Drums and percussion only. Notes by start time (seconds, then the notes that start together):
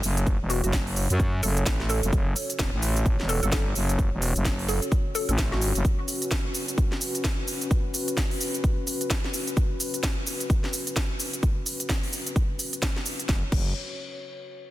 0.03 open hi-hat, shaker
0.17 closed hi-hat, shaker
0.27 kick, closed hi-hat, shaker
0.50 open hi-hat, shaker
0.64 closed hi-hat, shaker
0.73 kick, snare, closed hi-hat, shaker
0.87 open hi-hat
0.96 open hi-hat, shaker
1.10 closed hi-hat, shaker
1.20 kick, closed hi-hat, shaker
1.43 open hi-hat, shaker
1.57 closed hi-hat, shaker
1.66 kick, snare, closed hi-hat, shaker
1.80 snare
1.89 open hi-hat, shaker
2.03 closed hi-hat, shaker
2.13 kick, closed hi-hat, shaker
2.36 open hi-hat, shaker
2.50 closed hi-hat, shaker
2.59 kick, snare, closed hi-hat, shaker
2.82 open hi-hat, shaker
2.96 closed hi-hat, shaker
3.06 kick, closed hi-hat, shaker
3.20 snare
3.29 open hi-hat, shaker
3.43 closed hi-hat, shaker
3.52 kick, snare, closed hi-hat, shaker
3.75 open hi-hat, shaker
3.89 closed hi-hat, shaker
3.99 kick, closed hi-hat, shaker
4.22 open hi-hat, shaker
4.36 closed hi-hat, shaker
4.45 kick, snare, closed hi-hat, shaker
4.59 open hi-hat
4.69 open hi-hat, shaker
4.82 closed hi-hat, shaker
4.92 kick, closed hi-hat, shaker
5.15 open hi-hat, shaker
5.29 closed hi-hat, shaker
5.38 kick, snare, closed hi-hat, shaker
5.52 snare
5.62 open hi-hat, shaker
5.75 closed hi-hat, shaker
5.85 kick, closed hi-hat, shaker
6.08 open hi-hat, shaker
6.22 closed hi-hat, shaker
6.31 kick, snare, closed hi-hat, shaker
6.55 open hi-hat, shaker
6.68 closed hi-hat, shaker
6.78 kick, closed hi-hat, shaker
6.92 snare
7.01 open hi-hat, shaker
7.15 closed hi-hat, shaker
7.24 kick, snare, closed hi-hat, shaker
7.48 open hi-hat, shaker
7.61 closed hi-hat, shaker
7.71 kick, closed hi-hat, shaker
7.94 open hi-hat, shaker
8.08 closed hi-hat, shaker
8.17 kick, snare, closed hi-hat, shaker
8.31 open hi-hat
8.41 open hi-hat, shaker
8.54 closed hi-hat, shaker
8.64 kick, closed hi-hat, shaker
8.87 open hi-hat, shaker
9.01 closed hi-hat, shaker
9.10 kick, snare, closed hi-hat, shaker
9.24 snare
9.34 open hi-hat, shaker
9.47 closed hi-hat, shaker
9.57 kick, closed hi-hat, shaker
9.80 open hi-hat, shaker
9.94 closed hi-hat, shaker
10.03 kick, snare, closed hi-hat, shaker
10.27 open hi-hat, shaker
10.40 closed hi-hat, shaker
10.50 kick, closed hi-hat, shaker
10.64 snare
10.73 open hi-hat, shaker
10.87 closed hi-hat, shaker
10.96 kick, snare, closed hi-hat, shaker
11.20 open hi-hat, shaker
11.33 closed hi-hat, shaker
11.43 kick, closed hi-hat, shaker
11.66 open hi-hat, shaker
11.80 closed hi-hat, shaker
11.89 kick, snare, closed hi-hat, shaker
12.03 open hi-hat
12.13 open hi-hat, shaker
12.27 closed hi-hat, shaker
12.36 kick, closed hi-hat, shaker
12.59 open hi-hat, shaker
12.73 closed hi-hat, shaker
12.82 kick, snare, closed hi-hat, shaker
12.96 snare
13.06 open hi-hat, shaker
13.19 closed hi-hat, shaker
13.29 kick, snare
13.52 kick, crash